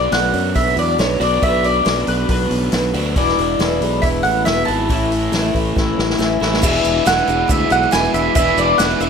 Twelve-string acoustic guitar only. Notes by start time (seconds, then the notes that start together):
Already playing: B3 D4 F#4
0.12 B2 F#3 B3 D4 F#4
0.33 B3 D4 F#4
0.54 F#3 B3 D4 F#4
0.98 B2 F#3 B3 D4 F#4
1.19 B3 D4 F#4
1.42 B2 F#3 B3 D4 F#4
1.63 B3 D4 F#4
1.85 B2 F#3 B3 D4 F#4
2.08 B3 D4 F#4
2.29 F#3 B3 D4 F#4
2.73 B2 F#3 B3 D4 F#4
2.94 B3 D4 F#4
3.16 E2 B2 E3 G#3 B3 E4
3.37 E3 G#3 B3 E4
3.59 E2 B2 E3 G#3 B3 E4
3.81 E3 G#3 B3 E4
4.02 E3 G#3 B3 E4
4.46 E2 B2 E3 G#3 B3 E4
4.67 E3 G#3 B3 E4
4.89 A2 E3 A3 C#4 E4
5.10 A3 C#4 E4
5.32 A2 E3 A3 C#4 E4
5.54 A3 C#4 E4
5.76 E3 A3 C#4 E4
6.18 A2 E3 A3 C#4 E4
6.40 A3 C#4 E4
6.62 E2 B2 E3 G#3 D4 E4
7.05 E2 B2 E3 G#3 D4 E4
7.27 E3 G#3 D4 E4
7.48 E3 G#3 D4 E4
7.69 E3 G#3 D4 E4
7.91 E2 B2 E3 G#3 D4 E4
8.35 E2 B2 E3 G#3 D4 E4
8.79 E2 B2 E3 G#3 D4 E4
9.00 E3 G#3 D4 E4